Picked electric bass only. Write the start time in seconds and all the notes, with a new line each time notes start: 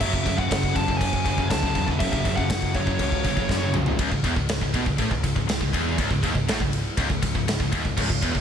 0.00 F#1
0.26 F#1
0.51 F#1
0.76 F#1
1.01 F#1
1.26 F#1
1.50 C#2
1.75 E2
2.01 F#1
2.25 F#1
2.50 F#1
2.75 F#1
2.99 C#2
3.24 F#1
3.49 F#1
3.75 C2
3.99 C#1
4.12 C#1
4.24 E1
4.36 C#1
4.49 C#1
4.61 C#1
4.74 B1
4.87 C#1
4.99 A1
5.11 C#1
5.24 C#1
5.36 C#1
5.49 C#1
5.61 C#1
5.74 E1
5.99 C#1
6.10 C#1
6.23 D#1
6.35 C#1
6.49 A1
6.60 C#1
6.98 C#1
7.10 C#1
7.22 C#1
7.35 C#1
7.48 C#1
7.60 C#1
7.72 D#1
7.85 C#1
7.97 C#1
8.10 C#1
8.22 E1
8.34 C#1